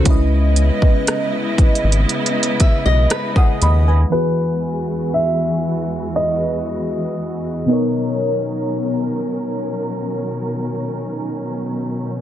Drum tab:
HH |x-----x-----x-----x-x-x-x-x-x-x-----x-----x-----|------------------------------------------------|------------------------------------------------|
SD |------------r-----------------------r-----------|------------------------------------------------|------------------------------------------------|
BD |o--------o--------o-----------o--------o--------|------------------------------------------------|------------------------------------------------|